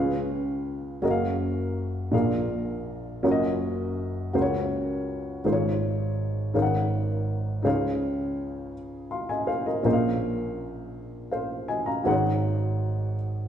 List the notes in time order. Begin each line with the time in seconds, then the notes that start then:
Already playing: C#2 C#3 C#4 F4 G#4 B4 F5
1.02 F#1 F#2 C#4 F#4 G#4 A#4 D#5
1.11 F5
2.11 A#1 A#2 D4 F4 G#4 A#4 F5
3.23 F#1 F#2 C#4 F4 F#4 A#4 C#5
3.31 D#5
4.33 C#2 C#3 F#4 A#4 C5
4.42 C#5
5.44 G#1 G#2 F4 G#4 C5
5.52 C#5
6.54 G#1 G#2 D#4 G#4 A#4 C#5 F5
6.62 F#5
7.62 C#2 C#3 D#4 G#4 C5 C#5 F5
9.11 F5 C6
9.29 D#5 G#5
9.47 C5 F5
9.66 A#4 D#5
9.83 A#1 A#2 C#4 G#4 A#4 C5 D#5
9.93 F5
11.31 C5 F5
11.68 D#5 G#5
11.86 F5 A#5
12.03 G#1 G#2 D#4 F#4 G#4 C5 F#5
12.12 C#5